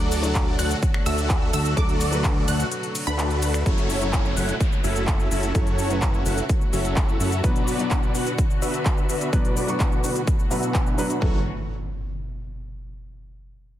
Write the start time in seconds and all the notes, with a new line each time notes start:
Already playing: D2 D3 F#3 A3 D4 F#4 A4 D5 D6
0.12 open hi-hat, ride, shaker
0.22 F#3 A3 D4 D5, closed hi-hat, shaker
0.35 kick, clap, closed hi-hat, shaker
0.59 D2 A3 D4 F#4 A4 F#5 F#6, open hi-hat, ride, shaker
0.71 closed hi-hat, shaker
0.83 kick, closed hi-hat, shaker
0.94 finger snap
1.06 D2 A3 D4 F#4 A4 E5 E6, open hi-hat, ride, shaker
1.18 closed hi-hat, shaker
1.30 kick, clap, closed hi-hat, shaker
1.53 D2 A3 D4 F#4 A4 E5 E6, open hi-hat, ride, shaker
1.65 closed hi-hat, shaker
1.76 F#3 A3 D4 A4 D6, kick, closed hi-hat, shaker
1.89 closed hi-hat
2.01 open hi-hat, ride, shaker
2.11 F#3 A3 D4 B4, closed hi-hat, shaker
2.24 kick, clap, closed hi-hat, shaker
2.48 D2 A3 D4 F#4 A4 F#5 F#6, open hi-hat, ride, shaker
2.60 closed hi-hat, shaker
2.72 closed hi-hat, shaker
2.83 closed hi-hat
2.95 open hi-hat, ride, shaker
3.07 D2 A3 D4 F#4 A4 B4 B5, closed hi-hat, shaker
3.19 clap, closed hi-hat, shaker
3.31 closed hi-hat
3.42 open hi-hat, ride, shaker
3.54 finger snap, closed hi-hat, shaker
3.65 F#1 C#3 F#3 A3 C#4 E4 F#4 A4 C#5, kick, closed hi-hat, downlifter, shaker
3.78 closed hi-hat, shaker
3.90 open hi-hat, shaker
4.00 F#3 C#4 E4 C#5, closed hi-hat, shaker
4.13 kick, clap, closed hi-hat, shaker
4.25 shaker
4.37 F#1 C#4 E4 F#4 A4 F#5, open hi-hat, shaker
4.49 closed hi-hat, shaker
4.61 kick, closed hi-hat, shaker
4.72 shaker
4.84 F#1 C#4 E4 F#4 A4 E5, open hi-hat, shaker
4.96 closed hi-hat, shaker
5.07 kick, clap, closed hi-hat, shaker
5.20 shaker
5.31 F#1 C#4 E4 F#4 A4 E5, open hi-hat, shaker
5.43 closed hi-hat, shaker
5.54 F#1 F#3 C#4 E4 F#4 A4 C#5, kick, closed hi-hat, shaker
5.67 closed hi-hat, shaker
5.79 open hi-hat, shaker
5.89 F#3 C#4 E4 B4, closed hi-hat, shaker
6.02 kick, clap, closed hi-hat, shaker
6.14 shaker
6.26 F#1 C#4 E4 F#4 A4 F#5, open hi-hat, shaker
6.38 closed hi-hat, shaker
6.49 kick, closed hi-hat, shaker
6.61 shaker
6.73 F#1 C#4 E4 F#4 A4 E5, open hi-hat, shaker
6.85 closed hi-hat, shaker
6.96 kick, clap, closed hi-hat, shaker
7.09 shaker
7.20 F#2 C#4 E4 F#4 A4 E5, open hi-hat, shaker
7.32 closed hi-hat, shaker
7.43 B2 D3 F#3 B3 D4 F#4 B4 D5, kick, closed hi-hat, shaker
7.56 closed hi-hat, shaker
7.68 open hi-hat, shaker
7.78 B2 F#3 B3 D4 D5, closed hi-hat, shaker
7.91 kick, clap, closed hi-hat, shaker
8.03 shaker
8.15 B3 D4 F#4 B4 F#5, open hi-hat, shaker
8.27 closed hi-hat, shaker
8.38 kick, closed hi-hat, shaker
8.50 shaker
8.62 B3 D4 F#4 B4 E5, open hi-hat, shaker
8.74 closed hi-hat, shaker
8.85 kick, clap, closed hi-hat, shaker
8.98 shaker
9.09 B3 D4 F#4 B4 E5, open hi-hat, shaker
9.21 closed hi-hat, shaker
9.32 B2 F#3 A3 B3 D4 B4 D5, kick, closed hi-hat, shaker
9.45 closed hi-hat, shaker
9.57 open hi-hat, shaker
9.67 B2 F#3 B3 D4 C#6, closed hi-hat, shaker
9.80 kick, clap, closed hi-hat, shaker
9.92 shaker
10.04 B3 D4 F#4 B4 F#5, open hi-hat, shaker
10.16 closed hi-hat, shaker
10.27 kick, closed hi-hat, shaker
10.39 shaker
10.50 B2 F#3 B3 D4 F#4 B4 E5, open hi-hat, shaker
10.63 closed hi-hat, shaker
10.74 kick, clap, closed hi-hat, shaker
10.87 shaker
10.98 F#3 B3 D4 F#4 B4 E5, open hi-hat, shaker
11.10 closed hi-hat, shaker
11.20 F#1 E3 F#3 A3 C#4 E4 F#4 A4 C#5, kick, impact